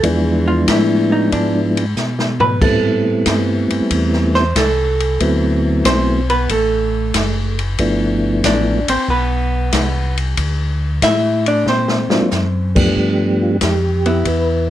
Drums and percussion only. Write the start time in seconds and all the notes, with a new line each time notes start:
0.03 kick, ride
0.68 kick, snare, hi-hat pedal, ride
1.32 kick, ride
1.77 ride
1.97 snare, hi-hat pedal
2.19 snare
2.40 floor tom
2.62 kick, crash
3.26 kick, snare, hi-hat pedal, ride
3.70 ride
3.91 kick, ride
4.13 snare
4.34 snare
4.56 kick, snare, hi-hat pedal, ride
5.00 ride
5.20 kick, ride
5.85 kick, snare, hi-hat pedal, ride
6.30 ride
6.49 kick, ride
7.14 kick, snare, hi-hat pedal, ride
7.59 ride
7.78 kick, ride
8.44 kick, snare, hi-hat pedal, ride
8.88 ride
9.08 kick
9.72 kick, snare, hi-hat pedal, ride
10.17 ride
10.37 kick, ride
11.02 kick, snare, hi-hat pedal, ride
11.46 ride
11.66 snare
11.88 snare
12.10 snare
12.31 snare, hi-hat pedal
12.76 kick, crash
12.96 kick
13.61 kick, snare, hi-hat pedal, ride
14.06 ride
14.25 kick, ride